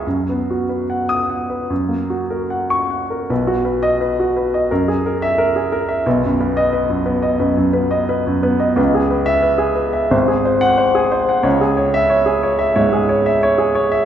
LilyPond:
<<
  \new Staff \with { instrumentName = "Grand piano" } { \time 4/4 \key b \major \tempo 4 = 88 << { r4 r16 dis'''8 r4. cis'''8 r16 | r8. dis''8 r4. e''8 r8. | r8. dis''8 r2 r8. | r8. e''8 r4. fis''8 r8. |
r8. e''8 r2 r8. | } \\ { r1 | b'16 fis'16 b'8 b'16 fis'16 b'16 dis''16 ais'16 gis'16 ais'8 ais'16 gis'16 ais'16 e''16 | b'16 fis,16 b'8 b'16 fis,16 b'16 dis''16 b'16 fis,16 b'16 dis''16 b'16 fis,16 b'16 dis''16 | b'16 gis'16 b'8 b'16 gis'16 b'16 e''16 bis'16 gis'16 bis'8 bis'16 gis'16 bis'16 fis''16 |
cis''16 gis'16 cis''8 cis''16 gis'16 cis''16 e''16 cis''16 gis'16 cis''16 e''16 cis''16 gis'16 cis''16 e''16 | } >> }
  \new Staff \with { instrumentName = "Grand piano" } { \time 4/4 \key b \major fis,16 b16 fis'16 b'16 fis''8 fis''16 b'16 fis,16 ais16 fis'16 ais'16 fis''8 fis''16 ais'16 | b,,2 fis,2 | b,,8 b8 r8 b8 fis,8 b8 r8 b8 | cis,2 gis,,2 |
cis,2 gis,8 r4. | }
>>